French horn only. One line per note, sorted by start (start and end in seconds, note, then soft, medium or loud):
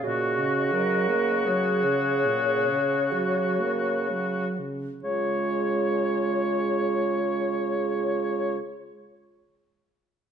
0.03 0.40 A#2 soft
0.39 0.74 C#3 soft
0.73 1.10 F#3 soft
1.09 1.48 A#3 soft
1.46 1.86 F#3 soft
1.84 2.27 C#3 soft
2.25 2.70 A#2 soft
2.68 3.14 C#3 soft
3.12 3.61 F#3 soft
3.60 4.12 A#3 soft
4.10 4.61 F#3 soft
4.59 4.91 C#3 soft
5.04 8.58 G#3 soft